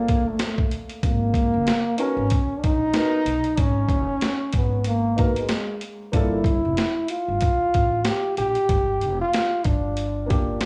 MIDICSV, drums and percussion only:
0, 0, Header, 1, 2, 480
1, 0, Start_track
1, 0, Tempo, 638298
1, 775, Time_signature, 4, 2, 24, 8
1, 8012, End_track
2, 0, Start_track
2, 0, Title_t, "Drums"
2, 64, Note_on_c, 9, 42, 62
2, 68, Note_on_c, 9, 36, 80
2, 139, Note_off_c, 9, 42, 0
2, 143, Note_off_c, 9, 36, 0
2, 295, Note_on_c, 9, 42, 87
2, 298, Note_on_c, 9, 38, 107
2, 370, Note_off_c, 9, 42, 0
2, 373, Note_off_c, 9, 38, 0
2, 437, Note_on_c, 9, 36, 88
2, 513, Note_off_c, 9, 36, 0
2, 537, Note_on_c, 9, 42, 68
2, 612, Note_off_c, 9, 42, 0
2, 673, Note_on_c, 9, 42, 48
2, 748, Note_off_c, 9, 42, 0
2, 775, Note_on_c, 9, 36, 99
2, 776, Note_on_c, 9, 42, 85
2, 851, Note_off_c, 9, 36, 0
2, 851, Note_off_c, 9, 42, 0
2, 1007, Note_on_c, 9, 36, 86
2, 1016, Note_on_c, 9, 42, 62
2, 1082, Note_off_c, 9, 36, 0
2, 1091, Note_off_c, 9, 42, 0
2, 1254, Note_on_c, 9, 42, 78
2, 1261, Note_on_c, 9, 38, 100
2, 1329, Note_off_c, 9, 42, 0
2, 1336, Note_off_c, 9, 38, 0
2, 1489, Note_on_c, 9, 42, 75
2, 1564, Note_off_c, 9, 42, 0
2, 1731, Note_on_c, 9, 42, 92
2, 1741, Note_on_c, 9, 36, 86
2, 1806, Note_off_c, 9, 42, 0
2, 1816, Note_off_c, 9, 36, 0
2, 1983, Note_on_c, 9, 42, 60
2, 1985, Note_on_c, 9, 36, 86
2, 2058, Note_off_c, 9, 42, 0
2, 2060, Note_off_c, 9, 36, 0
2, 2207, Note_on_c, 9, 42, 89
2, 2210, Note_on_c, 9, 38, 108
2, 2283, Note_off_c, 9, 42, 0
2, 2285, Note_off_c, 9, 38, 0
2, 2453, Note_on_c, 9, 42, 68
2, 2528, Note_off_c, 9, 42, 0
2, 2587, Note_on_c, 9, 42, 50
2, 2662, Note_off_c, 9, 42, 0
2, 2688, Note_on_c, 9, 42, 81
2, 2690, Note_on_c, 9, 36, 103
2, 2763, Note_off_c, 9, 42, 0
2, 2765, Note_off_c, 9, 36, 0
2, 2922, Note_on_c, 9, 36, 87
2, 2930, Note_on_c, 9, 42, 59
2, 2997, Note_off_c, 9, 36, 0
2, 3005, Note_off_c, 9, 42, 0
2, 3169, Note_on_c, 9, 42, 82
2, 3175, Note_on_c, 9, 38, 98
2, 3244, Note_off_c, 9, 42, 0
2, 3251, Note_off_c, 9, 38, 0
2, 3403, Note_on_c, 9, 42, 78
2, 3411, Note_on_c, 9, 36, 91
2, 3478, Note_off_c, 9, 42, 0
2, 3486, Note_off_c, 9, 36, 0
2, 3643, Note_on_c, 9, 42, 88
2, 3718, Note_off_c, 9, 42, 0
2, 3894, Note_on_c, 9, 42, 57
2, 3902, Note_on_c, 9, 36, 82
2, 3970, Note_off_c, 9, 42, 0
2, 3977, Note_off_c, 9, 36, 0
2, 4033, Note_on_c, 9, 42, 51
2, 4108, Note_off_c, 9, 42, 0
2, 4126, Note_on_c, 9, 42, 89
2, 4128, Note_on_c, 9, 38, 105
2, 4201, Note_off_c, 9, 42, 0
2, 4203, Note_off_c, 9, 38, 0
2, 4370, Note_on_c, 9, 42, 67
2, 4445, Note_off_c, 9, 42, 0
2, 4612, Note_on_c, 9, 36, 94
2, 4612, Note_on_c, 9, 42, 86
2, 4687, Note_off_c, 9, 36, 0
2, 4687, Note_off_c, 9, 42, 0
2, 4844, Note_on_c, 9, 36, 89
2, 4856, Note_on_c, 9, 42, 63
2, 4920, Note_off_c, 9, 36, 0
2, 4931, Note_off_c, 9, 42, 0
2, 5093, Note_on_c, 9, 42, 76
2, 5100, Note_on_c, 9, 38, 100
2, 5168, Note_off_c, 9, 42, 0
2, 5175, Note_off_c, 9, 38, 0
2, 5327, Note_on_c, 9, 42, 73
2, 5402, Note_off_c, 9, 42, 0
2, 5570, Note_on_c, 9, 42, 93
2, 5582, Note_on_c, 9, 36, 89
2, 5645, Note_off_c, 9, 42, 0
2, 5657, Note_off_c, 9, 36, 0
2, 5821, Note_on_c, 9, 42, 56
2, 5826, Note_on_c, 9, 36, 77
2, 5896, Note_off_c, 9, 42, 0
2, 5901, Note_off_c, 9, 36, 0
2, 6051, Note_on_c, 9, 42, 87
2, 6053, Note_on_c, 9, 38, 116
2, 6126, Note_off_c, 9, 42, 0
2, 6128, Note_off_c, 9, 38, 0
2, 6296, Note_on_c, 9, 42, 67
2, 6371, Note_off_c, 9, 42, 0
2, 6431, Note_on_c, 9, 42, 52
2, 6506, Note_off_c, 9, 42, 0
2, 6536, Note_on_c, 9, 36, 101
2, 6536, Note_on_c, 9, 42, 82
2, 6611, Note_off_c, 9, 36, 0
2, 6611, Note_off_c, 9, 42, 0
2, 6779, Note_on_c, 9, 42, 61
2, 6854, Note_off_c, 9, 42, 0
2, 7020, Note_on_c, 9, 42, 79
2, 7027, Note_on_c, 9, 38, 103
2, 7095, Note_off_c, 9, 42, 0
2, 7102, Note_off_c, 9, 38, 0
2, 7253, Note_on_c, 9, 42, 78
2, 7258, Note_on_c, 9, 36, 91
2, 7328, Note_off_c, 9, 42, 0
2, 7333, Note_off_c, 9, 36, 0
2, 7495, Note_on_c, 9, 42, 85
2, 7571, Note_off_c, 9, 42, 0
2, 7747, Note_on_c, 9, 42, 56
2, 7750, Note_on_c, 9, 36, 81
2, 7823, Note_off_c, 9, 42, 0
2, 7826, Note_off_c, 9, 36, 0
2, 7976, Note_on_c, 9, 42, 90
2, 7978, Note_on_c, 9, 38, 110
2, 8012, Note_off_c, 9, 38, 0
2, 8012, Note_off_c, 9, 42, 0
2, 8012, End_track
0, 0, End_of_file